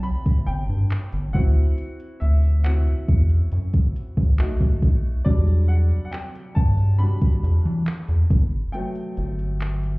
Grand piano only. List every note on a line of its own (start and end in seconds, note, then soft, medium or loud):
0.00 1.36 A3 medium
0.00 1.36 B3 soft
0.00 1.35 E4 medium
0.00 1.36 F#4 medium
0.00 1.36 A4 medium
0.00 1.36 D5 medium
0.00 1.33 F#5 loud
0.00 0.46 G5 loud
0.00 1.37 A5 loud
0.00 0.44 B5 loud
0.46 1.37 G5 loud
1.33 1.92 C4 medium
1.33 1.93 E4 medium
1.33 1.93 F#4 medium
1.33 2.23 F#5 loud
2.20 2.30 E5 medium
2.64 3.04 C4 medium
2.64 3.05 E4 soft
2.64 3.05 F#4 medium
2.64 4.78 F#5 medium
4.39 5.22 A3 medium
4.39 5.22 D#4 medium
4.39 5.22 F#4 medium
5.25 8.27 F#3 medium
5.25 6.98 G3 medium
5.25 6.99 D4 medium
5.25 5.70 D5 medium
5.68 6.03 F#5 medium
6.05 6.12 F#5 medium
6.11 6.53 G5 loud
6.55 7.00 A5 loud
6.99 7.39 G3 soft
6.99 7.40 D4 soft
6.99 7.40 F#4 medium
6.99 8.78 B5 loud
8.72 9.99 F#3 medium
8.72 9.99 A3 medium
8.72 9.99 B3 medium
8.72 9.99 G5 medium